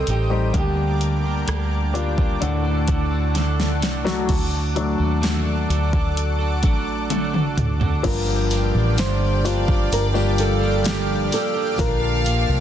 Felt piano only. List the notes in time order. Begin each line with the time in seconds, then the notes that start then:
Already playing: G3 C4 D#4 G4
0.30 G3 C4 D#4 G4
0.54 D3 G3 A#3 D4 G4
1.94 G3 A#3 D4 F4
2.41 A2 D3 A3 D4 F#5
4.04 F#3 A3 D4 F#4
4.76 F#3 A3 D4
8.03 G2 D3 F3 G3 A#3 D4 F4
9.44 F3 G3 A#3 D4 F4
10.14 F3 G3 A#3 D4 G4
11.78 A#2 F3 A#3 D4 F4